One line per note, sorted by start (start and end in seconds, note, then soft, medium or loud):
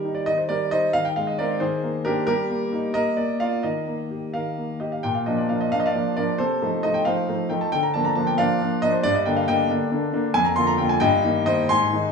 0.00 0.26 D#3 medium
0.00 0.18 G3 medium
0.00 0.12 G4 medium
0.00 0.16 A#4 medium
0.05 0.41 D#4 medium
0.15 0.26 D5 medium
0.26 0.93 D#3 medium
0.26 0.38 D#5 loud
0.37 0.49 C5 medium
0.49 0.86 G3 medium
0.49 0.71 A#4 medium
0.49 0.72 D5 medium
0.71 0.95 D#4 medium
0.71 0.93 C5 medium
0.71 0.94 D#5 loud
0.93 1.59 D#3 medium
0.93 1.05 F5 loud
1.05 1.17 G5 medium
1.16 1.38 G#3 medium
1.16 1.28 F5 medium
1.27 1.39 D#5 medium
1.39 1.59 G#3 medium
1.39 1.60 C4 medium
1.39 1.60 A#4 medium
1.39 1.61 D5 medium
1.60 2.25 D#3 medium
1.60 2.02 G#4 medium
1.60 2.05 C5 medium
1.83 2.04 A#3 medium
2.05 2.25 A#3 medium
2.05 2.26 D4 medium
2.05 2.26 G4 medium
2.05 2.25 A#4 loud
2.27 2.93 G3 medium
2.27 2.91 G4 medium
2.27 2.93 A#4 loud
2.50 2.71 A#3 medium
2.72 2.93 A#3 medium
2.72 2.93 D#4 medium
2.94 3.16 A#3 medium
2.94 3.16 A#4 medium
2.94 3.17 D#5 loud
3.17 3.40 A#3 medium
3.17 3.40 A#4 medium
3.17 3.40 D5 medium
3.40 3.62 A#3 soft
3.40 3.62 F4 medium
3.40 3.63 D5 medium
3.40 3.64 F5 loud
3.63 4.33 D#3 medium
3.63 4.33 A#4 medium
3.63 4.78 D#5 medium
3.87 4.25 A#3 soft
4.11 4.48 G4 soft
4.34 5.02 D#3 medium
4.34 4.78 A#4 medium
4.34 4.81 F5 medium
4.58 4.95 A#3 soft
4.80 5.04 G4 medium
4.80 4.92 D#5 medium
4.92 5.04 F5 medium
5.03 5.26 A#2 medium
5.03 5.15 G5 loud
5.15 5.27 F5 medium
5.26 5.48 F3 medium
5.26 5.48 A#3 medium
5.26 5.48 D4 medium
5.26 5.38 D#5 medium
5.38 5.50 D5 medium
5.49 5.71 F3 medium
5.49 5.71 A#3 medium
5.49 5.71 D4 medium
5.49 5.61 F5 medium
5.61 5.72 D#5 medium
5.72 5.93 F3 medium
5.72 5.93 A#3 medium
5.72 5.94 D4 medium
5.72 5.79 F5 loud
5.80 5.87 D#5 medium
5.86 6.15 D5 medium
5.86 6.17 F5 medium
5.95 6.16 F3 medium
5.95 6.16 A#3 medium
5.95 6.16 D4 medium
6.17 6.38 F3 medium
6.17 6.38 A#3 medium
6.17 6.38 D4 medium
6.17 6.38 A#4 medium
6.17 6.40 D5 medium
6.38 6.61 C3 medium
6.38 6.81 A4 medium
6.38 6.84 C5 loud
6.62 6.82 F3 medium
6.62 6.82 A3 medium
6.62 6.83 D#4 medium
6.83 7.04 F3 medium
6.83 7.05 A3 medium
6.83 7.05 D#4 medium
6.83 6.95 D#5 loud
6.94 7.06 G5 medium
7.05 7.26 F3 medium
7.05 7.27 A3 medium
7.05 7.27 D#4 medium
7.05 7.48 C5 medium
7.05 7.50 F5 loud
7.29 7.49 F3 medium
7.29 7.49 A3 medium
7.29 7.49 D#4 medium
7.49 7.71 F3 medium
7.49 7.71 A3 medium
7.49 7.71 D#4 medium
7.49 7.61 G5 medium
7.61 7.73 A5 medium
7.72 7.94 D3 medium
7.72 7.84 G5 loud
7.83 7.95 A#5 medium
7.94 8.15 F3 medium
7.94 8.15 A#3 medium
7.94 8.15 D4 medium
7.94 8.05 A5 medium
8.05 8.16 A#5 medium
8.15 8.36 F3 medium
8.15 8.37 A#3 medium
8.15 8.37 D4 medium
8.15 8.27 A5 medium
8.27 8.38 G5 medium
8.38 8.58 F3 medium
8.38 8.59 A#3 medium
8.38 8.59 D4 medium
8.38 8.79 D5 medium
8.38 8.82 F5 loud
8.61 8.80 F3 medium
8.61 8.81 A#3 medium
8.61 8.81 D4 medium
8.82 9.02 F3 medium
8.82 9.02 A#3 medium
8.82 9.02 D4 medium
8.82 8.93 D#5 loud
8.93 9.04 C5 medium
9.03 9.25 G2 medium
9.03 9.14 D5 loud
9.15 9.25 D#5 medium
9.26 9.46 D3 medium
9.26 9.46 A#3 medium
9.26 9.46 D4 medium
9.26 9.36 G5 medium
9.36 9.47 F5 medium
9.48 9.67 D3 medium
9.48 9.68 A#3 medium
9.48 9.68 D4 medium
9.48 9.68 D#5 medium
9.48 9.69 G5 loud
9.70 9.89 D3 medium
9.70 9.89 A#3 medium
9.70 9.89 D4 medium
9.91 10.11 D3 medium
9.91 10.11 A#3 medium
9.91 10.11 D4 medium
10.13 10.32 D3 medium
10.13 10.33 A#3 medium
10.13 10.33 D4 medium
10.34 10.56 F2 medium
10.34 10.45 G#5 loud
10.45 10.56 A#5 medium
10.56 10.76 D3 medium
10.56 10.77 A#3 medium
10.56 10.77 F4 medium
10.56 10.67 C6 loud
10.67 10.78 A#5 loud
10.78 10.99 D3 medium
10.78 10.99 A#3 medium
10.78 10.99 F4 medium
10.78 10.89 G5 medium
10.89 11.00 G#5 loud
11.00 11.23 G2 loud
11.00 11.44 D#5 loud
11.00 11.46 G5 loud
11.24 11.45 D#3 medium
11.24 11.45 A#3 medium
11.24 11.45 D#4 medium
11.46 11.68 D#3 medium
11.46 11.68 A#3 medium
11.46 11.68 D#4 medium
11.46 11.68 C5 medium
11.46 11.69 D#5 loud
11.69 11.92 G#2 medium
11.69 12.12 G#5 medium
11.69 12.12 C6 loud
11.93 12.12 D#3 medium
11.93 12.12 G#3 medium
11.93 12.12 D#4 medium